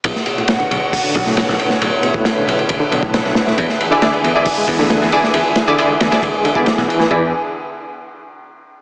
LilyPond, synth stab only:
\new Staff \with { instrumentName = "Synth stab" } { \time 4/4 \key e \mixolydian \tempo 4 = 136 r1 | r1 | r8. <e' gis' d''>16 <e' gis' d''>16 r8 <e' gis' d''>16 r4. <e' gis' d''>8 | r8. <e' gis' d''>16 <e' gis' d''>16 r8 <e' gis' d''>16 r8. <e' gis' d''>16 r4 |
<e' gis' d''>8 r2. r8 | }